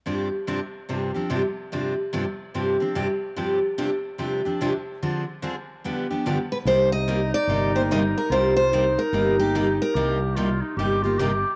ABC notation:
X:1
M:4/4
L:1/8
Q:"Swing" 1/4=146
K:Cm
V:1 name="Steel-string acoustic guitar"
z8 | z8 | z8 | z6 z =B |
c e2 d2 c e B | c c2 B2 G2 B- | B z6 z |]
V:2 name="Clarinet"
z8 | z8 | z8 | z8 |
E8 | F2 E6 | G2 F E G F G2 |]
V:3 name="Steel-string acoustic guitar"
[G,,C,F,CDG] z [G,,C,F,CDG] z [G,,C,F,CDG] [F,CDG] [G,,C,F,CDG] z | [G,,C,F,CDG] z [G,,C,F,CDG] z [G,,C,F,CDG] [F,CDG] [G,,C,F,CDG] z | [G,,C,F,CDG] z [G,,C,F,CDG] z [G,,C,F,CDG] [F,CDG] [G,,C,F,CDG] z | [D,F,CDA] z [D,F,CDA] z [G,,D,F,=B,DG] [F,B,DG] [G,,D,F,B,DG] z |
[C,G,B,EG] z [C,G,B,EG] z [C,G,B,EG] [B,EG] [C,G,B,EG] z | [C,G,B,EG] z [C,G,B,EG] z [C,G,B,EG] [B,EG] [C,G,B,EG] z | [C,G,B,EG] z [C,G,B,EG] z [C,G,B,EG] [B,EG] [C,G,B,EG] z |]
V:4 name="Fretless electric bass" clef=bass
z8 | z8 | z8 | z8 |
C,,4 G,,,4 | C,,4 G,,,4 | C,,4 G,,,4 |]